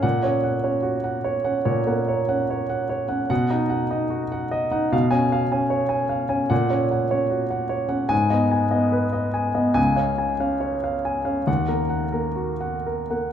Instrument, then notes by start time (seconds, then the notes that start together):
grand piano
0.03 A#2 F#5
0.23 C#4 C#5
0.43 F#5
0.64 C#4 C#5
0.83 F#4
1.04 F#5
1.24 C#5
1.45 C#4 F#5
1.65 A#2 C#5
1.87 A#3 F#5
2.08 C#5
2.29 C#4 F#5
2.50 C#5
2.69 F#5
2.89 C#5
3.09 C#4 F#5
3.30 B2 F#5
3.50 D#4 D#5
3.70 F#5
3.91 D#4 D#5
4.10 F#4
4.32 F#5
4.51 D#5
4.71 D#4 F#5
4.92 B2 F5
5.11 C#4 G#5
5.32 F5
5.52 C#4 G#5
5.70 C#5
5.89 G#5
6.09 F5
6.29 C#4 G#5
6.50 A#2 F#5
6.70 C#4 C#5
6.91 F#5
7.10 C#4 C#5
7.30 F#4
7.50 F#5
7.69 C#5
7.89 C#4 F#5
8.09 G#2 G#5
8.30 B3 D#5
8.51 G#5
8.71 B3 D#5
8.92 B4
9.13 D#5
9.34 G#5
9.55 B3 D#5
9.74 C#2 G#5
9.96 C#4 F5
10.18 G#5
10.40 C#4 F5
10.60 C#5
10.84 F5
11.05 G#5
11.25 C#4 F5
11.47 D#2 F#5
11.68 A#3 A#4
11.89 F#5
12.12 A#3 A#4
12.36 F#4
12.61 F#5
12.86 A#4
13.10 A#3 F#5